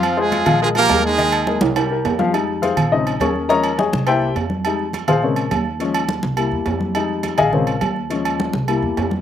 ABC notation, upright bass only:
X:1
M:4/4
L:1/8
Q:1/4=208
K:Fm
V:1 name="Upright bass" clef=bass
F,,3 B,,,3 E,,2- | E,,3 C,,3 F,,2- | F,,3 B,,,3 E,,2- | E,,3 C,,3 F,,2- |
F,,3 B,,,3 E,,2- | E,,3 C,,2 =E,, F,,2- | F,,3 B,,,3 E,,2- | E,,3 C,,2 =E,, F,,2 |]